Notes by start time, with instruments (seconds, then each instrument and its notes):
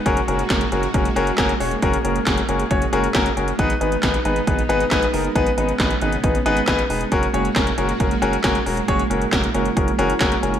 Already playing: string machine G#3
0.06 analog synth bass F#1, string machine A#3 F#4, grand piano C#4 F#4 G#4 A#4, kick, closed hi-hat
0.17 closed hi-hat
0.28 analog synth bass F#1, grand piano C#4 F#4 G#4 A#4, closed hi-hat
0.39 closed hi-hat
0.50 analog synth bass F#1, grand piano C#4 F#4 G#4 A#4, kick, snare, clap, closed hi-hat
0.61 closed hi-hat
0.72 analog synth bass F#1, grand piano C#4 F#4 G#4 A#4, closed hi-hat
0.83 closed hi-hat
0.94 analog synth bass F#1, grand piano C#4 F#4 G#4 A#4, kick, closed hi-hat
1.05 closed hi-hat
1.16 analog synth bass F#1, grand piano C#4 F#4 G#4 A#4, closed hi-hat
1.27 closed hi-hat
1.38 analog synth bass F#1, grand piano C#4 F#4 G#4 A#4, kick, snare, clap, closed hi-hat
1.49 closed hi-hat
1.60 analog synth bass E1, grand piano C#4 F#4 G#4 C#5, open hi-hat
1.71 closed hi-hat
1.82 analog synth bass F#1, grand piano C#4 F#4 G#4 A#4, string machine G#4, kick, closed hi-hat
1.93 closed hi-hat
2.04 analog synth bass F#1, grand piano C#4 F#4 G#4 A#4, closed hi-hat
2.16 closed hi-hat
2.26 analog synth bass F#1, grand piano C#4 F#4 G#4 A#4, kick, snare, clap, closed hi-hat
2.38 closed hi-hat
2.49 analog synth bass F#1, grand piano C#4 F#4 G#4 A#4, closed hi-hat
2.60 closed hi-hat
2.71 analog synth bass F#1, grand piano C#4 F#4 G#4 C#5, kick, closed hi-hat
2.82 closed hi-hat
2.93 analog synth bass F#1, grand piano C#4 F#4 G#4 A#4, closed hi-hat
3.04 closed hi-hat
3.15 analog synth bass F#1, grand piano C#4 F#4 G#4 A#4, kick, snare, clap, closed hi-hat
3.26 closed hi-hat
3.37 analog synth bass F#1, grand piano C#4 F#4 G#4 A#4, closed hi-hat
3.48 closed hi-hat
3.59 analog synth bass G#1, grand piano B3 D#4 G#4 B4, string machine B3 D#4, kick, closed hi-hat
3.70 closed hi-hat
3.81 analog synth bass G#1, grand piano B3 D#4 G#4 B4, closed hi-hat
3.92 closed hi-hat
4.03 analog synth bass G#1, grand piano B3 D#4 G#4 B4, kick, snare, clap, closed hi-hat
4.14 closed hi-hat
4.25 analog synth bass G#1, grand piano B3 D#4 G#4 B4, closed hi-hat
4.36 closed hi-hat
4.47 analog synth bass G#1, grand piano B3 D#4 G#4 B4, kick, closed hi-hat
4.59 closed hi-hat
4.69 analog synth bass G#1, grand piano B3 D#4 G#4 B4, closed hi-hat
4.80 closed hi-hat
4.91 analog synth bass G#1, grand piano B3 D#4 G#4 B4, kick, snare, clap, closed hi-hat
5.03 closed hi-hat
5.13 analog synth bass F#1, grand piano B3 D#4 G#4 A#4, open hi-hat
5.25 closed hi-hat
5.35 analog synth bass G#1, grand piano B3 D#4 G#4 B4, string machine C#4, kick, closed hi-hat
5.47 closed hi-hat
5.57 analog synth bass G#1, grand piano B3 D#4 G#4 B4, closed hi-hat
5.69 closed hi-hat
5.80 analog synth bass G#1, grand piano B3 D#4 G#4 B4, kick, snare, clap, closed hi-hat
5.91 closed hi-hat
6.02 analog synth bass G#1, grand piano B3 D#4 G#4 B4, closed hi-hat
6.12 closed hi-hat
6.24 analog synth bass G#1, grand piano B3 D#4 G#4 B4, kick, closed hi-hat
6.35 closed hi-hat
6.46 analog synth bass G#1, grand piano B3 D#4 G#4 B4, closed hi-hat
6.57 closed hi-hat
6.68 analog synth bass G#1, grand piano B3 D#4 G#4 B4, kick, snare, clap, closed hi-hat
6.79 closed hi-hat
6.90 analog synth bass E1, grand piano B3 D#4 G#4 B4, open hi-hat
7.01 closed hi-hat
7.12 analog synth bass F#1, string machine G#3 A#3 F#4, grand piano C#4 F#4 G#4 A#4, kick, closed hi-hat
7.23 closed hi-hat
7.34 analog synth bass F#1, grand piano C#4 F#4 G#4 C#5, closed hi-hat
7.45 closed hi-hat
7.56 analog synth bass F#1, grand piano C#4 F#4 G#4 A#4, kick, snare, clap, closed hi-hat
7.67 closed hi-hat
7.78 analog synth bass F#1, grand piano C#4 F#4 G#4 A#4, closed hi-hat
7.89 closed hi-hat
8.00 analog synth bass F#1, grand piano C#4 F#4 G#4 A#4, kick, closed hi-hat
8.11 closed hi-hat
8.22 analog synth bass F#1, grand piano C#4 F#4 G#4 A#4, closed hi-hat
8.33 closed hi-hat
8.44 analog synth bass F#1, grand piano C#4 F#4 G#4 A#4, kick, snare, clap, closed hi-hat
8.55 closed hi-hat
8.66 analog synth bass E1, grand piano C#4 F#4 G#4 A#4, open hi-hat
8.77 closed hi-hat
8.88 analog synth bass F#1, grand piano C#4 F#4 G#4 C#5, string machine E4, kick, closed hi-hat
8.99 closed hi-hat
9.10 analog synth bass F#1, grand piano C#4 F#4 G#4 A#4, closed hi-hat
9.22 closed hi-hat
9.32 analog synth bass F#1, grand piano C#4 F#4 G#4 A#4, kick, snare, clap, closed hi-hat
9.44 closed hi-hat
9.54 analog synth bass F#1, grand piano C#4 F#4 G#4 A#4, closed hi-hat
9.66 closed hi-hat
9.76 analog synth bass F#1, grand piano C#4 F#4 G#4 A#4, kick, closed hi-hat
9.88 closed hi-hat
9.99 analog synth bass F#1, grand piano C#4 F#4 G#4 A#4, closed hi-hat
10.10 closed hi-hat
10.21 analog synth bass F#1, grand piano C#4 F#4 G#4 A#4, kick, snare, clap, closed hi-hat
10.32 closed hi-hat
10.43 analog synth bass F#1, grand piano C#4 F#4 G#4 A#4, closed hi-hat
10.54 closed hi-hat